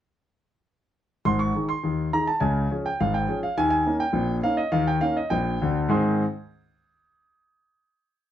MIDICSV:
0, 0, Header, 1, 2, 480
1, 0, Start_track
1, 0, Key_signature, -4, "major"
1, 0, Tempo, 583090
1, 1028, Time_signature, 2, 2, 24, 8
1, 6843, End_track
2, 0, Start_track
2, 0, Title_t, "Grand piano"
2, 0, Program_c, 0, 0
2, 1031, Note_on_c, 0, 32, 61
2, 1031, Note_on_c, 0, 84, 89
2, 1035, Note_on_c, 0, 44, 67
2, 1146, Note_on_c, 0, 85, 81
2, 1150, Note_off_c, 0, 84, 0
2, 1235, Note_off_c, 0, 32, 0
2, 1237, Note_off_c, 0, 44, 0
2, 1275, Note_on_c, 0, 51, 44
2, 1280, Note_on_c, 0, 63, 39
2, 1282, Note_on_c, 0, 68, 41
2, 1340, Note_off_c, 0, 85, 0
2, 1388, Note_on_c, 0, 84, 75
2, 1405, Note_off_c, 0, 51, 0
2, 1409, Note_off_c, 0, 63, 0
2, 1411, Note_off_c, 0, 68, 0
2, 1510, Note_on_c, 0, 51, 61
2, 1513, Note_on_c, 0, 39, 58
2, 1713, Note_off_c, 0, 51, 0
2, 1715, Note_off_c, 0, 39, 0
2, 1730, Note_off_c, 0, 84, 0
2, 1753, Note_on_c, 0, 51, 38
2, 1756, Note_on_c, 0, 82, 85
2, 1757, Note_on_c, 0, 63, 46
2, 1760, Note_on_c, 0, 68, 48
2, 1872, Note_off_c, 0, 82, 0
2, 1872, Note_on_c, 0, 81, 75
2, 1883, Note_off_c, 0, 51, 0
2, 1886, Note_off_c, 0, 63, 0
2, 1888, Note_off_c, 0, 68, 0
2, 1978, Note_on_c, 0, 80, 76
2, 1981, Note_on_c, 0, 49, 74
2, 1983, Note_on_c, 0, 37, 65
2, 1990, Note_off_c, 0, 81, 0
2, 2187, Note_off_c, 0, 37, 0
2, 2187, Note_off_c, 0, 49, 0
2, 2232, Note_on_c, 0, 53, 41
2, 2232, Note_on_c, 0, 61, 49
2, 2238, Note_on_c, 0, 68, 48
2, 2268, Note_off_c, 0, 80, 0
2, 2352, Note_on_c, 0, 79, 74
2, 2362, Note_off_c, 0, 53, 0
2, 2362, Note_off_c, 0, 61, 0
2, 2366, Note_off_c, 0, 68, 0
2, 2468, Note_off_c, 0, 79, 0
2, 2471, Note_on_c, 0, 44, 60
2, 2473, Note_on_c, 0, 77, 83
2, 2477, Note_on_c, 0, 32, 66
2, 2586, Note_on_c, 0, 79, 77
2, 2588, Note_off_c, 0, 77, 0
2, 2671, Note_off_c, 0, 44, 0
2, 2674, Note_off_c, 0, 32, 0
2, 2702, Note_on_c, 0, 53, 44
2, 2708, Note_on_c, 0, 61, 44
2, 2715, Note_on_c, 0, 68, 51
2, 2776, Note_off_c, 0, 79, 0
2, 2824, Note_on_c, 0, 77, 74
2, 2834, Note_off_c, 0, 53, 0
2, 2838, Note_off_c, 0, 61, 0
2, 2843, Note_off_c, 0, 68, 0
2, 2943, Note_off_c, 0, 77, 0
2, 2943, Note_on_c, 0, 39, 70
2, 2943, Note_on_c, 0, 51, 76
2, 2944, Note_on_c, 0, 80, 104
2, 3037, Note_off_c, 0, 80, 0
2, 3050, Note_on_c, 0, 80, 88
2, 3145, Note_off_c, 0, 39, 0
2, 3145, Note_off_c, 0, 51, 0
2, 3178, Note_on_c, 0, 58, 48
2, 3182, Note_on_c, 0, 63, 57
2, 3183, Note_on_c, 0, 61, 43
2, 3245, Note_off_c, 0, 80, 0
2, 3293, Note_on_c, 0, 79, 80
2, 3310, Note_off_c, 0, 58, 0
2, 3313, Note_off_c, 0, 63, 0
2, 3314, Note_off_c, 0, 61, 0
2, 3400, Note_on_c, 0, 34, 70
2, 3403, Note_on_c, 0, 46, 67
2, 3582, Note_off_c, 0, 79, 0
2, 3611, Note_off_c, 0, 34, 0
2, 3613, Note_off_c, 0, 46, 0
2, 3648, Note_on_c, 0, 58, 45
2, 3650, Note_on_c, 0, 77, 86
2, 3656, Note_on_c, 0, 61, 53
2, 3658, Note_on_c, 0, 63, 52
2, 3764, Note_on_c, 0, 75, 78
2, 3774, Note_off_c, 0, 77, 0
2, 3783, Note_off_c, 0, 58, 0
2, 3789, Note_off_c, 0, 61, 0
2, 3790, Note_off_c, 0, 63, 0
2, 3884, Note_on_c, 0, 51, 82
2, 3884, Note_on_c, 0, 77, 90
2, 3890, Note_on_c, 0, 39, 65
2, 3891, Note_off_c, 0, 75, 0
2, 4011, Note_off_c, 0, 77, 0
2, 4012, Note_on_c, 0, 79, 81
2, 4094, Note_off_c, 0, 51, 0
2, 4097, Note_off_c, 0, 39, 0
2, 4124, Note_on_c, 0, 77, 86
2, 4125, Note_on_c, 0, 58, 45
2, 4131, Note_on_c, 0, 61, 53
2, 4132, Note_on_c, 0, 63, 53
2, 4135, Note_off_c, 0, 79, 0
2, 4251, Note_off_c, 0, 77, 0
2, 4253, Note_on_c, 0, 75, 71
2, 4261, Note_off_c, 0, 58, 0
2, 4265, Note_off_c, 0, 61, 0
2, 4266, Note_off_c, 0, 63, 0
2, 4364, Note_on_c, 0, 79, 82
2, 4370, Note_on_c, 0, 46, 63
2, 4373, Note_on_c, 0, 34, 70
2, 4376, Note_off_c, 0, 75, 0
2, 4579, Note_off_c, 0, 46, 0
2, 4581, Note_off_c, 0, 34, 0
2, 4623, Note_on_c, 0, 38, 70
2, 4627, Note_on_c, 0, 50, 71
2, 4757, Note_off_c, 0, 79, 0
2, 4815, Note_off_c, 0, 38, 0
2, 4817, Note_off_c, 0, 50, 0
2, 4844, Note_on_c, 0, 44, 87
2, 4849, Note_on_c, 0, 51, 67
2, 4849, Note_on_c, 0, 60, 71
2, 4852, Note_on_c, 0, 63, 69
2, 4853, Note_on_c, 0, 68, 78
2, 4854, Note_on_c, 0, 72, 74
2, 4856, Note_on_c, 0, 84, 56
2, 5120, Note_off_c, 0, 44, 0
2, 5123, Note_off_c, 0, 51, 0
2, 5123, Note_off_c, 0, 60, 0
2, 5124, Note_off_c, 0, 63, 0
2, 5125, Note_off_c, 0, 68, 0
2, 5125, Note_off_c, 0, 72, 0
2, 5126, Note_off_c, 0, 84, 0
2, 6843, End_track
0, 0, End_of_file